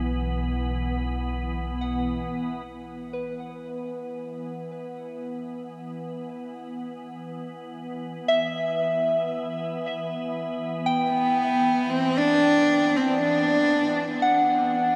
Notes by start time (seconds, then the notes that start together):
Already playing: B1 E3 B3
1.81 F#5
2.67 E3 B3
3.13 B4
8.28 E5
10.86 G5
11.11 B3
11.90 C4
12.17 D4
12.96 C4
13.22 D4
14.22 F#5